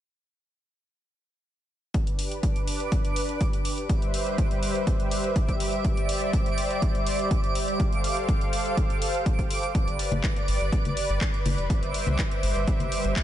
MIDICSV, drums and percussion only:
0, 0, Header, 1, 2, 480
1, 0, Start_track
1, 0, Tempo, 487805
1, 1913, Time_signature, 4, 2, 24, 8
1, 13020, End_track
2, 0, Start_track
2, 0, Title_t, "Drums"
2, 1912, Note_on_c, 9, 36, 115
2, 1912, Note_on_c, 9, 42, 61
2, 2011, Note_off_c, 9, 36, 0
2, 2011, Note_off_c, 9, 42, 0
2, 2037, Note_on_c, 9, 42, 39
2, 2136, Note_off_c, 9, 42, 0
2, 2152, Note_on_c, 9, 46, 96
2, 2251, Note_off_c, 9, 46, 0
2, 2277, Note_on_c, 9, 42, 40
2, 2376, Note_off_c, 9, 42, 0
2, 2392, Note_on_c, 9, 36, 112
2, 2392, Note_on_c, 9, 42, 68
2, 2491, Note_off_c, 9, 36, 0
2, 2491, Note_off_c, 9, 42, 0
2, 2517, Note_on_c, 9, 42, 37
2, 2616, Note_off_c, 9, 42, 0
2, 2632, Note_on_c, 9, 46, 88
2, 2731, Note_off_c, 9, 46, 0
2, 2757, Note_on_c, 9, 42, 36
2, 2856, Note_off_c, 9, 42, 0
2, 2872, Note_on_c, 9, 36, 114
2, 2872, Note_on_c, 9, 42, 65
2, 2971, Note_off_c, 9, 36, 0
2, 2971, Note_off_c, 9, 42, 0
2, 2997, Note_on_c, 9, 42, 36
2, 3095, Note_off_c, 9, 42, 0
2, 3112, Note_on_c, 9, 46, 100
2, 3210, Note_off_c, 9, 46, 0
2, 3237, Note_on_c, 9, 42, 37
2, 3335, Note_off_c, 9, 42, 0
2, 3352, Note_on_c, 9, 36, 115
2, 3352, Note_on_c, 9, 42, 66
2, 3450, Note_off_c, 9, 42, 0
2, 3451, Note_off_c, 9, 36, 0
2, 3477, Note_on_c, 9, 42, 37
2, 3575, Note_off_c, 9, 42, 0
2, 3592, Note_on_c, 9, 46, 89
2, 3690, Note_off_c, 9, 46, 0
2, 3717, Note_on_c, 9, 42, 38
2, 3815, Note_off_c, 9, 42, 0
2, 3832, Note_on_c, 9, 36, 117
2, 3832, Note_on_c, 9, 42, 59
2, 3931, Note_off_c, 9, 36, 0
2, 3931, Note_off_c, 9, 42, 0
2, 3957, Note_on_c, 9, 42, 36
2, 4056, Note_off_c, 9, 42, 0
2, 4072, Note_on_c, 9, 46, 99
2, 4171, Note_off_c, 9, 46, 0
2, 4197, Note_on_c, 9, 42, 37
2, 4295, Note_off_c, 9, 42, 0
2, 4312, Note_on_c, 9, 36, 117
2, 4312, Note_on_c, 9, 42, 66
2, 4411, Note_off_c, 9, 36, 0
2, 4411, Note_off_c, 9, 42, 0
2, 4437, Note_on_c, 9, 42, 38
2, 4536, Note_off_c, 9, 42, 0
2, 4552, Note_on_c, 9, 46, 88
2, 4650, Note_off_c, 9, 46, 0
2, 4677, Note_on_c, 9, 42, 37
2, 4776, Note_off_c, 9, 42, 0
2, 4792, Note_on_c, 9, 36, 112
2, 4792, Note_on_c, 9, 42, 59
2, 4890, Note_off_c, 9, 42, 0
2, 4891, Note_off_c, 9, 36, 0
2, 4918, Note_on_c, 9, 42, 36
2, 5016, Note_off_c, 9, 42, 0
2, 5032, Note_on_c, 9, 46, 98
2, 5131, Note_off_c, 9, 46, 0
2, 5157, Note_on_c, 9, 42, 36
2, 5256, Note_off_c, 9, 42, 0
2, 5272, Note_on_c, 9, 36, 117
2, 5272, Note_on_c, 9, 42, 61
2, 5371, Note_off_c, 9, 36, 0
2, 5371, Note_off_c, 9, 42, 0
2, 5397, Note_on_c, 9, 36, 60
2, 5397, Note_on_c, 9, 42, 38
2, 5496, Note_off_c, 9, 36, 0
2, 5496, Note_off_c, 9, 42, 0
2, 5512, Note_on_c, 9, 46, 90
2, 5611, Note_off_c, 9, 46, 0
2, 5638, Note_on_c, 9, 42, 36
2, 5736, Note_off_c, 9, 42, 0
2, 5752, Note_on_c, 9, 36, 120
2, 5752, Note_on_c, 9, 42, 60
2, 5851, Note_off_c, 9, 36, 0
2, 5851, Note_off_c, 9, 42, 0
2, 5877, Note_on_c, 9, 42, 37
2, 5976, Note_off_c, 9, 42, 0
2, 5992, Note_on_c, 9, 46, 108
2, 6091, Note_off_c, 9, 46, 0
2, 6232, Note_on_c, 9, 36, 118
2, 6232, Note_on_c, 9, 42, 64
2, 6331, Note_off_c, 9, 36, 0
2, 6331, Note_off_c, 9, 42, 0
2, 6357, Note_on_c, 9, 42, 38
2, 6456, Note_off_c, 9, 42, 0
2, 6472, Note_on_c, 9, 46, 91
2, 6571, Note_off_c, 9, 46, 0
2, 6597, Note_on_c, 9, 42, 35
2, 6696, Note_off_c, 9, 42, 0
2, 6712, Note_on_c, 9, 36, 120
2, 6712, Note_on_c, 9, 42, 58
2, 6811, Note_off_c, 9, 36, 0
2, 6811, Note_off_c, 9, 42, 0
2, 6837, Note_on_c, 9, 42, 37
2, 6936, Note_off_c, 9, 42, 0
2, 6952, Note_on_c, 9, 46, 99
2, 7051, Note_off_c, 9, 46, 0
2, 7078, Note_on_c, 9, 42, 36
2, 7176, Note_off_c, 9, 42, 0
2, 7192, Note_on_c, 9, 36, 118
2, 7192, Note_on_c, 9, 42, 58
2, 7291, Note_off_c, 9, 36, 0
2, 7291, Note_off_c, 9, 42, 0
2, 7318, Note_on_c, 9, 42, 35
2, 7416, Note_off_c, 9, 42, 0
2, 7433, Note_on_c, 9, 46, 96
2, 7531, Note_off_c, 9, 46, 0
2, 7558, Note_on_c, 9, 42, 34
2, 7656, Note_off_c, 9, 42, 0
2, 7672, Note_on_c, 9, 36, 125
2, 7673, Note_on_c, 9, 42, 58
2, 7771, Note_off_c, 9, 36, 0
2, 7771, Note_off_c, 9, 42, 0
2, 7798, Note_on_c, 9, 42, 36
2, 7896, Note_off_c, 9, 42, 0
2, 7913, Note_on_c, 9, 46, 104
2, 8011, Note_off_c, 9, 46, 0
2, 8038, Note_on_c, 9, 42, 34
2, 8136, Note_off_c, 9, 42, 0
2, 8152, Note_on_c, 9, 36, 119
2, 8153, Note_on_c, 9, 42, 62
2, 8251, Note_off_c, 9, 36, 0
2, 8251, Note_off_c, 9, 42, 0
2, 8278, Note_on_c, 9, 42, 36
2, 8376, Note_off_c, 9, 42, 0
2, 8393, Note_on_c, 9, 46, 93
2, 8491, Note_off_c, 9, 46, 0
2, 8518, Note_on_c, 9, 42, 35
2, 8616, Note_off_c, 9, 42, 0
2, 8633, Note_on_c, 9, 36, 114
2, 8633, Note_on_c, 9, 42, 59
2, 8731, Note_off_c, 9, 36, 0
2, 8732, Note_off_c, 9, 42, 0
2, 8758, Note_on_c, 9, 42, 36
2, 8857, Note_off_c, 9, 42, 0
2, 8873, Note_on_c, 9, 46, 99
2, 8971, Note_off_c, 9, 46, 0
2, 8998, Note_on_c, 9, 42, 35
2, 9096, Note_off_c, 9, 42, 0
2, 9113, Note_on_c, 9, 36, 123
2, 9113, Note_on_c, 9, 42, 60
2, 9211, Note_off_c, 9, 36, 0
2, 9211, Note_off_c, 9, 42, 0
2, 9238, Note_on_c, 9, 36, 61
2, 9238, Note_on_c, 9, 42, 35
2, 9336, Note_off_c, 9, 36, 0
2, 9337, Note_off_c, 9, 42, 0
2, 9353, Note_on_c, 9, 46, 92
2, 9451, Note_off_c, 9, 46, 0
2, 9478, Note_on_c, 9, 42, 36
2, 9576, Note_off_c, 9, 42, 0
2, 9593, Note_on_c, 9, 36, 119
2, 9593, Note_on_c, 9, 42, 59
2, 9691, Note_off_c, 9, 36, 0
2, 9691, Note_off_c, 9, 42, 0
2, 9718, Note_on_c, 9, 42, 36
2, 9816, Note_off_c, 9, 42, 0
2, 9833, Note_on_c, 9, 46, 104
2, 9931, Note_off_c, 9, 46, 0
2, 9953, Note_on_c, 9, 63, 87
2, 9958, Note_on_c, 9, 42, 36
2, 10052, Note_off_c, 9, 63, 0
2, 10056, Note_off_c, 9, 42, 0
2, 10073, Note_on_c, 9, 36, 113
2, 10073, Note_on_c, 9, 39, 110
2, 10073, Note_on_c, 9, 42, 58
2, 10171, Note_off_c, 9, 36, 0
2, 10171, Note_off_c, 9, 39, 0
2, 10171, Note_off_c, 9, 42, 0
2, 10198, Note_on_c, 9, 42, 34
2, 10296, Note_off_c, 9, 42, 0
2, 10313, Note_on_c, 9, 46, 91
2, 10411, Note_off_c, 9, 46, 0
2, 10438, Note_on_c, 9, 42, 35
2, 10537, Note_off_c, 9, 42, 0
2, 10553, Note_on_c, 9, 36, 111
2, 10553, Note_on_c, 9, 42, 61
2, 10651, Note_off_c, 9, 36, 0
2, 10652, Note_off_c, 9, 42, 0
2, 10678, Note_on_c, 9, 42, 36
2, 10682, Note_on_c, 9, 63, 62
2, 10777, Note_off_c, 9, 42, 0
2, 10780, Note_off_c, 9, 63, 0
2, 10793, Note_on_c, 9, 46, 102
2, 10891, Note_off_c, 9, 46, 0
2, 10918, Note_on_c, 9, 42, 34
2, 11016, Note_off_c, 9, 42, 0
2, 11032, Note_on_c, 9, 36, 119
2, 11033, Note_on_c, 9, 39, 107
2, 11033, Note_on_c, 9, 42, 59
2, 11131, Note_off_c, 9, 36, 0
2, 11131, Note_off_c, 9, 39, 0
2, 11131, Note_off_c, 9, 42, 0
2, 11158, Note_on_c, 9, 42, 35
2, 11256, Note_off_c, 9, 42, 0
2, 11273, Note_on_c, 9, 46, 92
2, 11274, Note_on_c, 9, 63, 92
2, 11371, Note_off_c, 9, 46, 0
2, 11373, Note_off_c, 9, 63, 0
2, 11398, Note_on_c, 9, 42, 34
2, 11496, Note_off_c, 9, 42, 0
2, 11512, Note_on_c, 9, 36, 113
2, 11513, Note_on_c, 9, 42, 65
2, 11611, Note_off_c, 9, 36, 0
2, 11611, Note_off_c, 9, 42, 0
2, 11637, Note_on_c, 9, 42, 39
2, 11736, Note_off_c, 9, 42, 0
2, 11752, Note_on_c, 9, 46, 100
2, 11851, Note_off_c, 9, 46, 0
2, 11872, Note_on_c, 9, 63, 80
2, 11878, Note_on_c, 9, 42, 39
2, 11971, Note_off_c, 9, 63, 0
2, 11976, Note_off_c, 9, 42, 0
2, 11992, Note_on_c, 9, 36, 108
2, 11992, Note_on_c, 9, 39, 112
2, 11992, Note_on_c, 9, 42, 65
2, 12091, Note_off_c, 9, 36, 0
2, 12091, Note_off_c, 9, 39, 0
2, 12091, Note_off_c, 9, 42, 0
2, 12117, Note_on_c, 9, 42, 37
2, 12216, Note_off_c, 9, 42, 0
2, 12232, Note_on_c, 9, 46, 87
2, 12331, Note_off_c, 9, 46, 0
2, 12357, Note_on_c, 9, 42, 36
2, 12456, Note_off_c, 9, 42, 0
2, 12472, Note_on_c, 9, 36, 112
2, 12472, Note_on_c, 9, 42, 64
2, 12571, Note_off_c, 9, 36, 0
2, 12571, Note_off_c, 9, 42, 0
2, 12590, Note_on_c, 9, 63, 61
2, 12597, Note_on_c, 9, 42, 36
2, 12689, Note_off_c, 9, 63, 0
2, 12696, Note_off_c, 9, 42, 0
2, 12712, Note_on_c, 9, 46, 98
2, 12810, Note_off_c, 9, 46, 0
2, 12837, Note_on_c, 9, 42, 39
2, 12936, Note_off_c, 9, 42, 0
2, 12952, Note_on_c, 9, 36, 116
2, 12952, Note_on_c, 9, 39, 111
2, 12952, Note_on_c, 9, 42, 62
2, 13020, Note_off_c, 9, 36, 0
2, 13020, Note_off_c, 9, 39, 0
2, 13020, Note_off_c, 9, 42, 0
2, 13020, End_track
0, 0, End_of_file